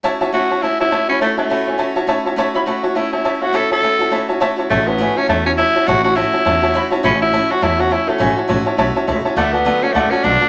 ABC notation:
X:1
M:4/4
L:1/8
Q:"Swing" 1/4=206
K:A
V:1 name="Upright piano"
[cea] [cea] [cea] [cea] [cea] [cea] [cea] [ceb] | [cea] [cea] [cea] [ceg] [cea] [cea] [cea] [cea] | [cea] [ceb] [cea] [cea] [cea] [cea] [cea] [cef] | [cea] [cea] [cea] [cea] [cea] [cea] [cea] [cea] |
[cea] [cea] [ceg] [cea] [cea] [cea] [cea] [cea] | [cea] [cea] [cea] [cea] [cea] [cea] [ceb] [cea] | [ceb] [cea] [cea] [cea] [cea] [cea] [cea] [cea] | [ceg] [cea] [cea] [cea] [cea] [cea] [cea] [cea] |
[dfa] [dfa] [dfa] [dfa] [dfa] [dfa] [dfa] [dfa] |]
V:2 name="Steel-string acoustic guitar"
[A,CEF] [CEF] [A,CEF] [CEF] [A,CEF] [CEF] [A,CEF] [CEF] | [A,CEF] [CEF] [A,CEF] [CEF] [A,CEF] [CEF] [A,CEF] [CEF] | [A,CEF] [CEF] [A,CEF] [CEF] [A,CEF] [CEF] [A,CEF] [CEF] | [A,CEF] [CEF] [A,CEF] [CEF] [A,CEF] [CEF] [A,CEF] [CEF] |
[A,CEF] [CEF] [A,CEF] [CEF] [A,CEF] [CEF] [A,CEF] [CEF] | [A,CEF] [CEF] [A,CEF] [CEF] [A,CEF] [CEF] [A,CEF] [CEF] | [A,CEF] [CEF] [A,CEF] [CEF] [A,CEF] [CEF] [A,CEF] [CEF] | [A,CEF] [CEF] [A,CEF] [CEF] [A,CEF] [CEF] [A,CEF] [CEF] |
[D,F,A,B,FA] [A,B,FA] [D,F,A,B,FA] [A,B,FA] [A,B,FA] [A,B,FA] [D,F,A,B,FA] [A,B,FA] |]
V:3 name="Tenor saxophone"
z2 F2 E E2 C | A, A,4 z3 | z2 F2 E E2 F | A A4 z3 |
A, B,2 C A, C E2 | F F E4- E z | C E2 F E F E A,- | A, z6 z |
A, B,2 C A, C D2 |]
V:4 name="Upright bass" clef=bass
z8 | z8 | z8 | z8 |
A,,,3 z E,,3 z | A,,,3 z E,,3 z | A,,,3 z E,,3 z | A,,, z A,,, z B,,, z C,, z |
D,,3 z C,, z B,,, z |]